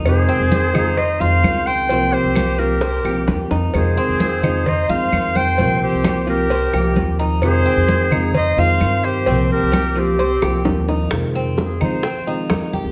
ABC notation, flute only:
X:1
M:4/4
L:1/8
Q:1/4=130
K:Fm
V:1 name="Flute"
A4 c c2 c- | c G2 G4 z | A4 c c2 c- | c G2 G4 z |
A4 c c2 G- | G G2 C4 z | z8 |]